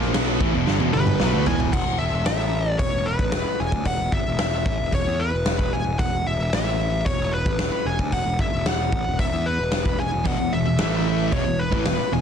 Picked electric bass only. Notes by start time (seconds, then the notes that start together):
Already playing: A#1
0.15 B1
0.41 A1
0.55 E1
0.68 G1
0.82 E1
0.94 G1
1.21 B1
1.35 D2
1.47 E1
1.73 E1
1.87 E1
2.00 E1
2.13 E1
2.27 A1
2.80 E1
2.92 E1
3.19 A1
3.33 E1
3.46 muted picked electric bass stroke
3.60 E1
3.72 D2
3.86 E1
4.00 E1
4.12 G1
4.26 E1
4.40 E1
4.66 A1
4.80 E1
4.93 E1
5.07 E2
5.33 E1
5.60 E1
5.73 E1
5.86 E1
5.99 E1
6.13 E1
6.26 E1
6.39 E1
6.53 A1
7.06 E1
7.18 E1
7.46 A1
7.58 E1
7.72 muted picked electric bass stroke
7.85 E1
7.99 D2
8.13 E1
8.25 E1
8.39 G1
8.53 E1
8.66 E1
8.92 A1
9.07 E1
9.19 E1
9.33 E2
9.59 E1
9.85 E1
9.99 E1
10.13 E1
10.26 E1
10.39 E1
10.52 E1
10.66 E1
10.79 A1
11.32 E1
11.46 E1
11.72 A1
11.86 E1
11.99 muted picked electric bass stroke
12.13 E1